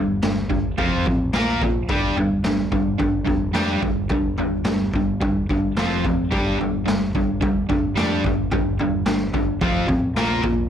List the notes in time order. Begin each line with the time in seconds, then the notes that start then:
Already playing: G1 G3 D4
0.22 G1 G3 D4, snare, floor tom
0.50 G1 G3 D4, kick, floor tom
0.78 F1 F3 C4 F4, kick, floor tom
1.06 A1 F3 C4, kick, floor tom
1.33 A#1 A#3 F4 A#4, snare, floor tom
1.61 A#1 A#3 F4, kick, floor tom
1.89 G1 G3 D4 G4, kick, floor tom
2.17 G3 D4, floor tom
2.43 G1 G3 D4, snare, floor tom
2.72 G1 G3 D4, kick, floor tom
2.99 G1 G3 D4, kick, floor tom
3.25 F1 G3 D4, kick, floor tom
3.54 F2 G3 D4 G4, snare, floor tom
3.82 G1 G3 D4, kick, floor tom
4.09 G1 G3 D4, kick, floor tom
4.38 G3 D4, floor tom
4.64 G1 G3 D4, snare, floor tom
4.93 G1 G3 D4, kick, floor tom
5.21 G1 G3 D4, kick, floor tom
5.49 G1 G3 D4, kick, floor tom
5.75 F1 F3 C4, snare, floor tom
5.79 F4
6.04 F1 F3 C4, kick, floor tom
6.31 G1 G3 D4 G4, kick, floor tom
6.59 G3 D4, floor tom
6.86 G1 G3 D4, snare, floor tom
7.14 G1 G3 D4, kick, floor tom
7.41 G1 G3 D4, kick, floor tom
7.69 F1 G3 D4, kick, floor tom
7.96 F2 G3 D4 G4, snare, floor tom
8.24 G1 G3 D4, kick, floor tom
8.51 G1 G3 D4, kick, floor tom
8.79 G3 D4, floor tom
9.06 G1 G3 D4, snare, floor tom
9.33 G1 G3 D4, kick, floor tom
9.61 F1 F3 C4 F4, kick, floor tom
9.87 A1 F3 C4, kick, floor tom
10.15 A#1 A#3 F4 A#4, snare, floor tom
10.42 A#1 A#3 F4, kick, floor tom